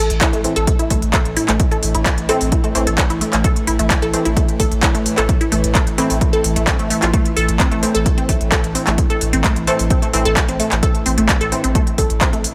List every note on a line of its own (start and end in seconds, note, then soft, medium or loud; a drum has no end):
0.00 12.54 A2 medium
0.00 12.54 E3 medium
0.10 0.21 A1 medium
0.10 closed hi-hat medium
0.21 0.28 E4 medium
0.21 kick loud
0.21 clap loud
0.21 closed hi-hat loud
0.33 0.44 A1 medium
0.33 0.36 A3 medium
0.33 closed hi-hat medium
0.44 0.56 E3 medium
0.44 0.56 A3 medium
0.44 0.56 C4 medium
0.44 open hi-hat loud
0.56 0.67 A1 medium
0.56 0.61 A4 loud
0.56 closed hi-hat medium
0.67 kick loud
0.67 closed hi-hat loud
0.79 0.86 E4 medium
0.79 closed hi-hat medium
0.90 1.02 A1 loud
0.90 0.93 A3 medium
0.90 kick medium
0.90 open hi-hat loud
1.02 1.13 A1 medium
1.02 closed hi-hat medium
1.13 1.18 A4 loud
1.13 kick loud
1.13 clap loud
1.13 closed hi-hat loud
1.25 1.36 A1 medium
1.25 closed hi-hat medium
1.37 1.44 E4 medium
1.37 open hi-hat loud
1.48 1.59 A1 medium
1.48 1.51 A3 medium
1.48 clap medium
1.48 closed hi-hat medium
1.60 kick loud
1.60 closed hi-hat loud
1.72 1.76 A4 loud
1.72 closed hi-hat medium
1.83 1.94 A1 loud
1.83 open hi-hat loud
1.95 2.06 A1 medium
1.95 2.01 E4 medium
1.95 closed hi-hat medium
2.06 2.09 A3 medium
2.06 kick loud
2.06 clap loud
2.06 closed hi-hat loud
2.18 2.29 A1 medium
2.18 closed hi-hat medium
2.29 2.47 E3 loud
2.29 2.47 A3 medium
2.29 2.47 C4 loud
2.29 2.34 A4 loud
2.29 open hi-hat loud
2.41 2.52 A1 medium
2.41 open hi-hat medium
2.52 2.59 E4 medium
2.52 kick loud
2.52 closed hi-hat loud
2.64 2.67 A3 medium
2.64 closed hi-hat medium
2.75 2.86 A1 loud
2.75 2.87 E3 loud
2.75 2.87 A3 medium
2.75 2.87 C4 loud
2.75 open hi-hat loud
2.87 2.98 A1 medium
2.87 2.91 A4 loud
2.87 closed hi-hat medium
2.98 kick loud
2.98 clap loud
2.98 closed hi-hat loud
3.10 3.21 A1 medium
3.10 3.17 E4 medium
3.10 closed hi-hat medium
3.21 3.24 A3 medium
3.21 open hi-hat loud
3.33 3.44 A1 medium
3.33 clap medium
3.33 closed hi-hat medium
3.44 3.49 A4 loud
3.44 kick loud
3.44 closed hi-hat loud
3.56 closed hi-hat medium
3.67 3.79 A1 loud
3.67 3.74 E4 medium
3.67 open hi-hat loud
3.79 3.90 A1 medium
3.79 3.82 A3 medium
3.79 closed hi-hat medium
3.90 kick loud
3.90 clap loud
3.90 closed hi-hat loud
4.02 4.13 A1 medium
4.02 4.07 A4 loud
4.02 closed hi-hat medium
4.13 4.25 E3 medium
4.13 4.25 A3 medium
4.13 4.25 C4 medium
4.13 open hi-hat loud
4.25 4.36 A1 medium
4.25 4.32 E4 medium
4.25 closed hi-hat medium
4.37 4.39 A3 medium
4.37 kick loud
4.37 closed hi-hat loud
4.48 closed hi-hat medium
4.60 4.71 A1 loud
4.60 4.64 A4 loud
4.60 kick medium
4.60 open hi-hat loud
4.72 4.83 A1 medium
4.72 closed hi-hat medium
4.83 4.90 E4 medium
4.83 kick loud
4.83 clap loud
4.83 closed hi-hat medium
4.95 5.06 A1 medium
4.95 4.97 A3 medium
4.95 closed hi-hat medium
5.06 open hi-hat loud
5.18 5.29 A1 medium
5.18 5.22 A4 loud
5.18 clap medium
5.18 closed hi-hat medium
5.29 kick loud
5.29 closed hi-hat medium
5.41 5.47 E4 medium
5.41 closed hi-hat medium
5.52 5.63 A1 loud
5.52 5.55 A3 medium
5.52 open hi-hat loud
5.64 5.75 A1 medium
5.64 closed hi-hat medium
5.75 5.80 A4 loud
5.75 kick loud
5.75 clap loud
5.75 closed hi-hat loud
5.87 5.98 A1 medium
5.87 closed hi-hat medium
5.98 6.17 E3 loud
5.98 6.17 A3 medium
5.98 6.17 C4 loud
5.98 6.05 E4 medium
5.98 open hi-hat loud
6.10 6.21 A1 medium
6.10 6.13 A3 medium
6.10 open hi-hat medium
6.21 kick loud
6.21 closed hi-hat medium
6.33 6.38 A4 loud
6.33 closed hi-hat medium
6.44 6.56 A1 loud
6.44 open hi-hat loud
6.56 6.67 A1 medium
6.56 6.59 A3 medium
6.56 closed hi-hat medium
6.67 6.74 C4 medium
6.67 kick loud
6.67 clap loud
6.67 closed hi-hat medium
6.79 6.90 A1 medium
6.79 6.86 A3 medium
6.79 closed hi-hat medium
6.90 6.95 A3 medium
6.90 open hi-hat loud
7.02 7.13 A1 medium
7.02 7.07 F4 medium
7.02 clap medium
7.02 closed hi-hat medium
7.13 7.16 A3 medium
7.13 kick loud
7.13 closed hi-hat medium
7.25 closed hi-hat medium
7.37 7.48 A1 loud
7.37 7.41 A4 loud
7.37 open hi-hat loud
7.48 7.59 A1 medium
7.48 closed hi-hat medium
7.60 7.64 C4 medium
7.60 kick loud
7.60 clap loud
7.60 closed hi-hat medium
7.72 7.83 A1 medium
7.72 7.74 A3 medium
7.72 closed hi-hat medium
7.83 7.95 E3 medium
7.83 7.95 A3 medium
7.83 7.95 C4 medium
7.83 open hi-hat loud
7.95 8.06 A1 medium
7.95 7.99 A4 loud
7.95 closed hi-hat medium
8.06 kick loud
8.06 closed hi-hat medium
8.18 8.22 C4 medium
8.18 closed hi-hat medium
8.29 8.40 A1 loud
8.29 8.32 A3 medium
8.29 kick medium
8.29 open hi-hat loud
8.41 8.52 A1 medium
8.41 closed hi-hat medium
8.52 8.57 A4 loud
8.52 kick loud
8.52 clap loud
8.52 closed hi-hat medium
8.64 8.75 A1 medium
8.64 closed hi-hat medium
8.75 8.80 C4 medium
8.75 open hi-hat loud
8.87 8.98 A1 medium
8.87 8.90 A3 medium
8.87 clap medium
8.87 closed hi-hat medium
8.98 kick loud
8.98 closed hi-hat medium
9.10 9.14 A4 loud
9.10 closed hi-hat medium
9.21 9.32 A1 loud
9.21 open hi-hat loud
9.33 9.44 A1 medium
9.33 9.38 C4 medium
9.33 closed hi-hat medium
9.44 9.47 A3 medium
9.44 kick loud
9.44 clap loud
9.44 closed hi-hat medium
9.56 9.67 A1 medium
9.56 closed hi-hat medium
9.67 9.86 E3 loud
9.67 9.86 A3 medium
9.67 9.86 C4 loud
9.67 9.72 A4 loud
9.67 open hi-hat loud
9.79 9.90 A1 medium
9.79 open hi-hat medium
9.90 9.95 C4 medium
9.90 kick loud
9.90 closed hi-hat medium
10.02 10.05 A3 medium
10.02 closed hi-hat soft
10.13 10.25 A1 loud
10.13 10.25 E3 loud
10.13 10.25 A3 medium
10.13 10.25 C4 loud
10.13 open hi-hat loud
10.25 10.36 A1 medium
10.25 10.30 A4 loud
10.25 closed hi-hat medium
10.37 kick loud
10.37 clap loud
10.37 closed hi-hat medium
10.48 10.59 A1 medium
10.48 10.53 C4 medium
10.48 closed hi-hat soft
10.60 10.62 A3 medium
10.60 open hi-hat loud
10.72 10.82 A1 medium
10.72 clap medium
10.72 closed hi-hat medium
10.83 10.87 A4 loud
10.83 kick loud
10.83 closed hi-hat medium
10.95 closed hi-hat medium
11.06 11.17 A1 loud
11.06 11.11 C4 medium
11.06 open hi-hat loud
11.18 11.29 A1 medium
11.18 11.20 A3 medium
11.18 closed hi-hat medium
11.29 kick loud
11.29 clap loud
11.29 closed hi-hat loud
11.41 11.52 A1 medium
11.41 11.45 A4 loud
11.41 closed hi-hat medium
11.52 11.64 E3 medium
11.52 11.64 A3 medium
11.52 11.64 C4 medium
11.52 open hi-hat loud
11.64 11.75 A1 medium
11.64 11.68 C4 medium
11.64 closed hi-hat medium
11.75 11.78 A3 medium
11.75 kick loud
11.75 closed hi-hat medium
11.87 closed hi-hat medium
11.98 12.09 A1 loud
11.98 12.03 A4 loud
11.98 kick medium
11.98 open hi-hat loud
12.10 12.21 A1 medium
12.10 closed hi-hat medium
12.21 12.26 C4 medium
12.21 kick loud
12.21 clap loud
12.21 closed hi-hat medium
12.33 12.44 A1 medium
12.33 12.36 A3 medium
12.33 closed hi-hat medium
12.44 open hi-hat loud